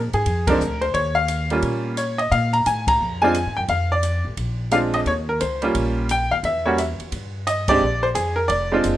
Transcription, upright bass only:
0.14 G#2
0.26 F2
0.61 D2
0.95 D#2
1.63 A#2
2.32 A#2
2.66 A2
3.00 F2
3.46 G#2
3.58 F#2
3.68 F2
4.25 A1
4.37 A#1
5.06 D#2
5.41 C#2
5.75 A#1
6.31 D#2
6.43 E2
7.00 muted upright bass stroke
7.12 G2
7.82 A#1
8.16 F2
8.49 F1
8.85 F#1

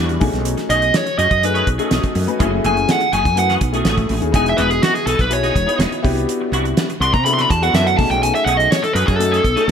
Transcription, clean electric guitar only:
0.09 muted clean electric guitar stroke
0.21 muted clean electric guitar stroke
0.57 muted clean electric guitar stroke
0.69 D#3 A3 C#4 G#4
0.81 muted clean electric guitar stroke
1.06 muted clean electric guitar stroke
1.17 D#3 A3 C#4 G#4
1.30 muted clean electric guitar stroke
1.42 muted clean electric guitar stroke
1.54 D#3 A3 C#4 G#4
1.66 muted clean electric guitar stroke
1.78 A3 C#4 G#4
1.91 D#3 A3 C#4 G#4
2.03 muted clean electric guitar stroke
2.15 muted clean electric guitar stroke
2.39 E3 A3 C#4 G#4
2.52 muted clean electric guitar stroke
2.64 E3 A3 C#4 G#4
2.76 muted clean electric guitar stroke
3.00 muted clean electric guitar stroke
3.12 E3 A3 C#4 G#4
3.24 muted clean electric guitar stroke
3.37 muted clean electric guitar stroke
3.49 E3 A3 C#4 G#4
3.61 muted clean electric guitar stroke
3.73 A3 C#4 G#4
3.86 E3 A3 C#4 G#4
3.98 muted clean electric guitar stroke
4.10 muted clean electric guitar stroke
4.34 F#3 B3 D#4 G#4
4.46 muted clean electric guitar stroke
4.59 F#3 B3 D#4 G#4
4.71 muted clean electric guitar stroke
4.96 muted clean electric guitar stroke
5.08 F#3 B3 D#4 G#4
5.19 muted clean electric guitar stroke
5.31 muted clean electric guitar stroke
5.43 F#3 B3 D#4 G#4
5.54 muted clean electric guitar stroke
5.67 B3 D#4 G#4
5.79 F#3 B3 D#4 G#4
5.92 muted clean electric guitar stroke
6.03 muted clean electric guitar stroke
6.41 muted clean electric guitar stroke
6.53 E3 B3 D4 F#4
6.66 muted clean electric guitar stroke
6.90 muted clean electric guitar stroke
7.01 E3 B3 D4 F#4
7.14 muted clean electric guitar stroke
7.26 muted clean electric guitar stroke
7.37 E3 B3 D4 F#4
7.50 muted clean electric guitar stroke
7.62 B3 D4 F#4
7.74 E3 B3 D4 F#4
7.87 muted clean electric guitar stroke
7.99 muted clean electric guitar stroke
8.34 muted clean electric guitar stroke
8.47 D#3 A3 C#4 G#4
8.59 muted clean electric guitar stroke
8.82 muted clean electric guitar stroke
8.95 D#3 A3 C#4 G#4
9.07 muted clean electric guitar stroke
9.19 muted clean electric guitar stroke
9.31 D#3 A3 C#4 G#4
9.43 muted clean electric guitar stroke
9.55 A3 C#4 G#4
9.67 D#3 A3 C#4

